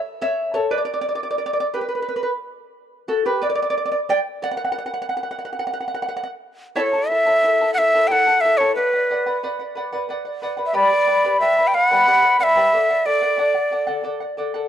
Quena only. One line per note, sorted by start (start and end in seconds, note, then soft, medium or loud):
6.76 6.81 D5 medium
6.80 7.10 C#5 medium
7.08 7.73 E5 loud
7.74 7.79 F#5 medium
7.78 8.09 E5 medium
8.08 8.13 G5 medium
8.12 8.42 F#5 loud
8.41 8.59 E5 medium
8.57 8.75 C#5 medium
8.75 9.38 B4 medium
10.66 10.76 E5 medium
10.75 11.40 D5 medium
11.40 11.69 E5 medium
11.67 11.76 G5 medium
11.74 11.85 F5 loud
11.85 12.39 F#5 loud
12.40 13.07 E5 loud
12.40 12.44 F#5 medium
13.06 14.05 D5 medium